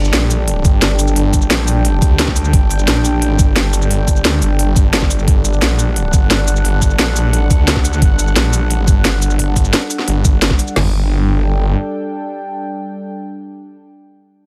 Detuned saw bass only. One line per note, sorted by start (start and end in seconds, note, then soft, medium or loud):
0.00 0.12 G1 loud
0.13 0.63 A#1 medium
0.65 1.15 G1 loud
1.16 1.49 G1 medium
1.51 2.01 A#1 medium
2.02 2.52 D2 loud
2.53 2.86 G1 medium
2.88 3.38 A#1 loud
3.39 3.89 G1 medium
3.91 4.23 G1 loud
4.25 4.41 D2 medium
4.42 5.26 G1 loud
5.28 5.61 G1 loud
5.62 6.12 A#1 medium
6.13 6.63 G1 loud
6.65 6.98 G1 loud
6.99 7.49 A#1 medium
7.51 8.01 D2 loud
8.02 8.35 G1 loud
8.36 8.86 A#1 medium
8.88 9.38 G1 loud
9.39 9.72 G1 loud
10.08 10.58 G1 loud
10.76 11.75 G1 loud